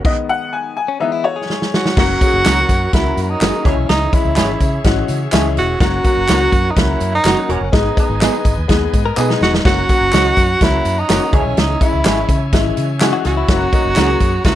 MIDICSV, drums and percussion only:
0, 0, Header, 1, 2, 480
1, 0, Start_track
1, 0, Tempo, 480000
1, 50, Time_signature, 4, 2, 24, 8
1, 14551, End_track
2, 0, Start_track
2, 0, Title_t, "Drums"
2, 48, Note_on_c, 9, 36, 118
2, 48, Note_on_c, 9, 49, 87
2, 148, Note_off_c, 9, 36, 0
2, 148, Note_off_c, 9, 49, 0
2, 1500, Note_on_c, 9, 38, 62
2, 1600, Note_off_c, 9, 38, 0
2, 1620, Note_on_c, 9, 38, 67
2, 1720, Note_off_c, 9, 38, 0
2, 1741, Note_on_c, 9, 38, 92
2, 1841, Note_off_c, 9, 38, 0
2, 1856, Note_on_c, 9, 38, 90
2, 1956, Note_off_c, 9, 38, 0
2, 1970, Note_on_c, 9, 49, 108
2, 1971, Note_on_c, 9, 36, 127
2, 1977, Note_on_c, 9, 54, 35
2, 1978, Note_on_c, 9, 38, 118
2, 2070, Note_off_c, 9, 49, 0
2, 2071, Note_off_c, 9, 36, 0
2, 2077, Note_off_c, 9, 54, 0
2, 2078, Note_off_c, 9, 38, 0
2, 2212, Note_on_c, 9, 36, 112
2, 2214, Note_on_c, 9, 42, 81
2, 2218, Note_on_c, 9, 54, 56
2, 2312, Note_off_c, 9, 36, 0
2, 2314, Note_off_c, 9, 42, 0
2, 2318, Note_off_c, 9, 54, 0
2, 2453, Note_on_c, 9, 42, 97
2, 2456, Note_on_c, 9, 39, 99
2, 2456, Note_on_c, 9, 54, 104
2, 2460, Note_on_c, 9, 38, 127
2, 2553, Note_off_c, 9, 42, 0
2, 2556, Note_off_c, 9, 39, 0
2, 2556, Note_off_c, 9, 54, 0
2, 2560, Note_off_c, 9, 38, 0
2, 2691, Note_on_c, 9, 36, 86
2, 2692, Note_on_c, 9, 54, 55
2, 2695, Note_on_c, 9, 42, 82
2, 2791, Note_off_c, 9, 36, 0
2, 2792, Note_off_c, 9, 54, 0
2, 2795, Note_off_c, 9, 42, 0
2, 2930, Note_on_c, 9, 42, 97
2, 2933, Note_on_c, 9, 36, 106
2, 2939, Note_on_c, 9, 54, 56
2, 2948, Note_on_c, 9, 38, 111
2, 3030, Note_off_c, 9, 42, 0
2, 3033, Note_off_c, 9, 36, 0
2, 3039, Note_off_c, 9, 54, 0
2, 3048, Note_off_c, 9, 38, 0
2, 3173, Note_on_c, 9, 54, 55
2, 3177, Note_on_c, 9, 42, 72
2, 3273, Note_off_c, 9, 54, 0
2, 3277, Note_off_c, 9, 42, 0
2, 3410, Note_on_c, 9, 42, 89
2, 3411, Note_on_c, 9, 39, 104
2, 3411, Note_on_c, 9, 54, 103
2, 3424, Note_on_c, 9, 38, 106
2, 3510, Note_off_c, 9, 42, 0
2, 3511, Note_off_c, 9, 39, 0
2, 3511, Note_off_c, 9, 54, 0
2, 3524, Note_off_c, 9, 38, 0
2, 3651, Note_on_c, 9, 36, 105
2, 3653, Note_on_c, 9, 42, 71
2, 3658, Note_on_c, 9, 38, 36
2, 3751, Note_off_c, 9, 36, 0
2, 3753, Note_off_c, 9, 42, 0
2, 3758, Note_off_c, 9, 38, 0
2, 3890, Note_on_c, 9, 42, 101
2, 3898, Note_on_c, 9, 38, 122
2, 3990, Note_off_c, 9, 42, 0
2, 3998, Note_off_c, 9, 38, 0
2, 4129, Note_on_c, 9, 36, 106
2, 4130, Note_on_c, 9, 42, 79
2, 4130, Note_on_c, 9, 54, 56
2, 4229, Note_off_c, 9, 36, 0
2, 4230, Note_off_c, 9, 42, 0
2, 4230, Note_off_c, 9, 54, 0
2, 4363, Note_on_c, 9, 39, 98
2, 4363, Note_on_c, 9, 54, 101
2, 4367, Note_on_c, 9, 42, 93
2, 4375, Note_on_c, 9, 38, 127
2, 4463, Note_off_c, 9, 39, 0
2, 4463, Note_off_c, 9, 54, 0
2, 4467, Note_off_c, 9, 42, 0
2, 4475, Note_off_c, 9, 38, 0
2, 4605, Note_on_c, 9, 54, 58
2, 4606, Note_on_c, 9, 36, 81
2, 4607, Note_on_c, 9, 42, 74
2, 4705, Note_off_c, 9, 54, 0
2, 4706, Note_off_c, 9, 36, 0
2, 4707, Note_off_c, 9, 42, 0
2, 4842, Note_on_c, 9, 42, 100
2, 4846, Note_on_c, 9, 36, 93
2, 4847, Note_on_c, 9, 54, 53
2, 4860, Note_on_c, 9, 38, 108
2, 4942, Note_off_c, 9, 42, 0
2, 4946, Note_off_c, 9, 36, 0
2, 4947, Note_off_c, 9, 54, 0
2, 4960, Note_off_c, 9, 38, 0
2, 5083, Note_on_c, 9, 54, 52
2, 5089, Note_on_c, 9, 42, 75
2, 5183, Note_off_c, 9, 54, 0
2, 5189, Note_off_c, 9, 42, 0
2, 5323, Note_on_c, 9, 39, 94
2, 5323, Note_on_c, 9, 54, 103
2, 5325, Note_on_c, 9, 42, 93
2, 5339, Note_on_c, 9, 38, 106
2, 5423, Note_off_c, 9, 39, 0
2, 5423, Note_off_c, 9, 54, 0
2, 5425, Note_off_c, 9, 42, 0
2, 5439, Note_off_c, 9, 38, 0
2, 5568, Note_on_c, 9, 42, 74
2, 5668, Note_off_c, 9, 42, 0
2, 5804, Note_on_c, 9, 36, 123
2, 5804, Note_on_c, 9, 54, 35
2, 5806, Note_on_c, 9, 42, 101
2, 5815, Note_on_c, 9, 38, 120
2, 5904, Note_off_c, 9, 36, 0
2, 5904, Note_off_c, 9, 54, 0
2, 5906, Note_off_c, 9, 42, 0
2, 5915, Note_off_c, 9, 38, 0
2, 6043, Note_on_c, 9, 54, 59
2, 6046, Note_on_c, 9, 36, 102
2, 6048, Note_on_c, 9, 42, 81
2, 6143, Note_off_c, 9, 54, 0
2, 6146, Note_off_c, 9, 36, 0
2, 6148, Note_off_c, 9, 42, 0
2, 6283, Note_on_c, 9, 39, 105
2, 6283, Note_on_c, 9, 54, 102
2, 6288, Note_on_c, 9, 42, 92
2, 6296, Note_on_c, 9, 38, 127
2, 6383, Note_off_c, 9, 39, 0
2, 6383, Note_off_c, 9, 54, 0
2, 6388, Note_off_c, 9, 42, 0
2, 6396, Note_off_c, 9, 38, 0
2, 6524, Note_on_c, 9, 36, 95
2, 6524, Note_on_c, 9, 42, 78
2, 6527, Note_on_c, 9, 54, 58
2, 6624, Note_off_c, 9, 36, 0
2, 6624, Note_off_c, 9, 42, 0
2, 6627, Note_off_c, 9, 54, 0
2, 6762, Note_on_c, 9, 42, 94
2, 6766, Note_on_c, 9, 36, 98
2, 6766, Note_on_c, 9, 54, 59
2, 6780, Note_on_c, 9, 38, 110
2, 6862, Note_off_c, 9, 42, 0
2, 6866, Note_off_c, 9, 36, 0
2, 6866, Note_off_c, 9, 54, 0
2, 6880, Note_off_c, 9, 38, 0
2, 7004, Note_on_c, 9, 54, 56
2, 7008, Note_on_c, 9, 42, 80
2, 7104, Note_off_c, 9, 54, 0
2, 7108, Note_off_c, 9, 42, 0
2, 7248, Note_on_c, 9, 39, 102
2, 7248, Note_on_c, 9, 54, 98
2, 7250, Note_on_c, 9, 42, 92
2, 7263, Note_on_c, 9, 38, 104
2, 7348, Note_off_c, 9, 39, 0
2, 7348, Note_off_c, 9, 54, 0
2, 7350, Note_off_c, 9, 42, 0
2, 7363, Note_off_c, 9, 38, 0
2, 7495, Note_on_c, 9, 42, 73
2, 7595, Note_off_c, 9, 42, 0
2, 7731, Note_on_c, 9, 36, 127
2, 7731, Note_on_c, 9, 42, 93
2, 7740, Note_on_c, 9, 38, 124
2, 7741, Note_on_c, 9, 54, 38
2, 7831, Note_off_c, 9, 36, 0
2, 7831, Note_off_c, 9, 42, 0
2, 7840, Note_off_c, 9, 38, 0
2, 7841, Note_off_c, 9, 54, 0
2, 7972, Note_on_c, 9, 36, 105
2, 7976, Note_on_c, 9, 42, 80
2, 7979, Note_on_c, 9, 54, 56
2, 8072, Note_off_c, 9, 36, 0
2, 8076, Note_off_c, 9, 42, 0
2, 8079, Note_off_c, 9, 54, 0
2, 8213, Note_on_c, 9, 39, 98
2, 8213, Note_on_c, 9, 54, 101
2, 8214, Note_on_c, 9, 42, 92
2, 8221, Note_on_c, 9, 38, 127
2, 8313, Note_off_c, 9, 39, 0
2, 8313, Note_off_c, 9, 54, 0
2, 8314, Note_off_c, 9, 42, 0
2, 8321, Note_off_c, 9, 38, 0
2, 8450, Note_on_c, 9, 36, 91
2, 8450, Note_on_c, 9, 42, 69
2, 8457, Note_on_c, 9, 54, 60
2, 8550, Note_off_c, 9, 36, 0
2, 8550, Note_off_c, 9, 42, 0
2, 8557, Note_off_c, 9, 54, 0
2, 8688, Note_on_c, 9, 42, 96
2, 8692, Note_on_c, 9, 36, 92
2, 8697, Note_on_c, 9, 54, 55
2, 8706, Note_on_c, 9, 38, 113
2, 8788, Note_off_c, 9, 42, 0
2, 8792, Note_off_c, 9, 36, 0
2, 8797, Note_off_c, 9, 54, 0
2, 8806, Note_off_c, 9, 38, 0
2, 8934, Note_on_c, 9, 42, 74
2, 8936, Note_on_c, 9, 36, 100
2, 8938, Note_on_c, 9, 54, 56
2, 9034, Note_off_c, 9, 42, 0
2, 9036, Note_off_c, 9, 36, 0
2, 9038, Note_off_c, 9, 54, 0
2, 9173, Note_on_c, 9, 39, 101
2, 9173, Note_on_c, 9, 54, 102
2, 9273, Note_off_c, 9, 39, 0
2, 9273, Note_off_c, 9, 54, 0
2, 9304, Note_on_c, 9, 38, 72
2, 9404, Note_off_c, 9, 38, 0
2, 9417, Note_on_c, 9, 54, 35
2, 9425, Note_on_c, 9, 38, 96
2, 9517, Note_off_c, 9, 54, 0
2, 9525, Note_off_c, 9, 38, 0
2, 9544, Note_on_c, 9, 38, 108
2, 9644, Note_off_c, 9, 38, 0
2, 9652, Note_on_c, 9, 36, 121
2, 9652, Note_on_c, 9, 55, 88
2, 9660, Note_on_c, 9, 38, 118
2, 9752, Note_off_c, 9, 36, 0
2, 9752, Note_off_c, 9, 55, 0
2, 9760, Note_off_c, 9, 38, 0
2, 9890, Note_on_c, 9, 54, 59
2, 9894, Note_on_c, 9, 36, 99
2, 9899, Note_on_c, 9, 42, 83
2, 9990, Note_off_c, 9, 54, 0
2, 9994, Note_off_c, 9, 36, 0
2, 9999, Note_off_c, 9, 42, 0
2, 10126, Note_on_c, 9, 39, 95
2, 10126, Note_on_c, 9, 54, 102
2, 10136, Note_on_c, 9, 42, 95
2, 10143, Note_on_c, 9, 38, 124
2, 10226, Note_off_c, 9, 39, 0
2, 10226, Note_off_c, 9, 54, 0
2, 10236, Note_off_c, 9, 42, 0
2, 10243, Note_off_c, 9, 38, 0
2, 10365, Note_on_c, 9, 54, 56
2, 10371, Note_on_c, 9, 36, 89
2, 10374, Note_on_c, 9, 42, 76
2, 10465, Note_off_c, 9, 54, 0
2, 10471, Note_off_c, 9, 36, 0
2, 10474, Note_off_c, 9, 42, 0
2, 10607, Note_on_c, 9, 42, 91
2, 10609, Note_on_c, 9, 54, 57
2, 10610, Note_on_c, 9, 36, 92
2, 10624, Note_on_c, 9, 38, 106
2, 10707, Note_off_c, 9, 42, 0
2, 10709, Note_off_c, 9, 54, 0
2, 10710, Note_off_c, 9, 36, 0
2, 10724, Note_off_c, 9, 38, 0
2, 10851, Note_on_c, 9, 54, 56
2, 10853, Note_on_c, 9, 42, 78
2, 10951, Note_off_c, 9, 54, 0
2, 10953, Note_off_c, 9, 42, 0
2, 11087, Note_on_c, 9, 42, 98
2, 11098, Note_on_c, 9, 39, 104
2, 11098, Note_on_c, 9, 54, 102
2, 11100, Note_on_c, 9, 38, 118
2, 11187, Note_off_c, 9, 42, 0
2, 11198, Note_off_c, 9, 39, 0
2, 11198, Note_off_c, 9, 54, 0
2, 11200, Note_off_c, 9, 38, 0
2, 11330, Note_on_c, 9, 36, 116
2, 11334, Note_on_c, 9, 42, 76
2, 11334, Note_on_c, 9, 54, 33
2, 11430, Note_off_c, 9, 36, 0
2, 11434, Note_off_c, 9, 42, 0
2, 11434, Note_off_c, 9, 54, 0
2, 11571, Note_on_c, 9, 42, 95
2, 11576, Note_on_c, 9, 54, 35
2, 11579, Note_on_c, 9, 38, 125
2, 11671, Note_off_c, 9, 42, 0
2, 11676, Note_off_c, 9, 54, 0
2, 11679, Note_off_c, 9, 38, 0
2, 11810, Note_on_c, 9, 36, 101
2, 11812, Note_on_c, 9, 54, 57
2, 11813, Note_on_c, 9, 42, 81
2, 11910, Note_off_c, 9, 36, 0
2, 11912, Note_off_c, 9, 54, 0
2, 11913, Note_off_c, 9, 42, 0
2, 12051, Note_on_c, 9, 39, 106
2, 12051, Note_on_c, 9, 42, 95
2, 12051, Note_on_c, 9, 54, 96
2, 12059, Note_on_c, 9, 38, 125
2, 12151, Note_off_c, 9, 39, 0
2, 12151, Note_off_c, 9, 42, 0
2, 12151, Note_off_c, 9, 54, 0
2, 12159, Note_off_c, 9, 38, 0
2, 12287, Note_on_c, 9, 36, 91
2, 12289, Note_on_c, 9, 42, 80
2, 12293, Note_on_c, 9, 54, 60
2, 12387, Note_off_c, 9, 36, 0
2, 12389, Note_off_c, 9, 42, 0
2, 12393, Note_off_c, 9, 54, 0
2, 12525, Note_on_c, 9, 42, 97
2, 12528, Note_on_c, 9, 36, 101
2, 12529, Note_on_c, 9, 54, 59
2, 12543, Note_on_c, 9, 38, 114
2, 12625, Note_off_c, 9, 42, 0
2, 12628, Note_off_c, 9, 36, 0
2, 12629, Note_off_c, 9, 54, 0
2, 12643, Note_off_c, 9, 38, 0
2, 12768, Note_on_c, 9, 42, 82
2, 12771, Note_on_c, 9, 54, 51
2, 12868, Note_off_c, 9, 42, 0
2, 12871, Note_off_c, 9, 54, 0
2, 13001, Note_on_c, 9, 42, 87
2, 13004, Note_on_c, 9, 39, 108
2, 13004, Note_on_c, 9, 54, 99
2, 13014, Note_on_c, 9, 38, 112
2, 13101, Note_off_c, 9, 42, 0
2, 13104, Note_off_c, 9, 39, 0
2, 13104, Note_off_c, 9, 54, 0
2, 13114, Note_off_c, 9, 38, 0
2, 13246, Note_on_c, 9, 42, 74
2, 13250, Note_on_c, 9, 54, 35
2, 13252, Note_on_c, 9, 38, 37
2, 13346, Note_off_c, 9, 42, 0
2, 13350, Note_off_c, 9, 54, 0
2, 13352, Note_off_c, 9, 38, 0
2, 13482, Note_on_c, 9, 42, 95
2, 13486, Note_on_c, 9, 36, 121
2, 13490, Note_on_c, 9, 38, 122
2, 13493, Note_on_c, 9, 54, 34
2, 13582, Note_off_c, 9, 42, 0
2, 13586, Note_off_c, 9, 36, 0
2, 13590, Note_off_c, 9, 38, 0
2, 13593, Note_off_c, 9, 54, 0
2, 13726, Note_on_c, 9, 42, 73
2, 13726, Note_on_c, 9, 54, 56
2, 13727, Note_on_c, 9, 36, 110
2, 13826, Note_off_c, 9, 42, 0
2, 13826, Note_off_c, 9, 54, 0
2, 13827, Note_off_c, 9, 36, 0
2, 13958, Note_on_c, 9, 39, 103
2, 13958, Note_on_c, 9, 54, 97
2, 13964, Note_on_c, 9, 42, 88
2, 13971, Note_on_c, 9, 38, 127
2, 14058, Note_off_c, 9, 39, 0
2, 14058, Note_off_c, 9, 54, 0
2, 14064, Note_off_c, 9, 42, 0
2, 14071, Note_off_c, 9, 38, 0
2, 14202, Note_on_c, 9, 54, 60
2, 14205, Note_on_c, 9, 36, 85
2, 14208, Note_on_c, 9, 42, 78
2, 14302, Note_off_c, 9, 54, 0
2, 14305, Note_off_c, 9, 36, 0
2, 14308, Note_off_c, 9, 42, 0
2, 14443, Note_on_c, 9, 54, 55
2, 14444, Note_on_c, 9, 42, 96
2, 14447, Note_on_c, 9, 36, 100
2, 14462, Note_on_c, 9, 38, 119
2, 14543, Note_off_c, 9, 54, 0
2, 14544, Note_off_c, 9, 42, 0
2, 14547, Note_off_c, 9, 36, 0
2, 14551, Note_off_c, 9, 38, 0
2, 14551, End_track
0, 0, End_of_file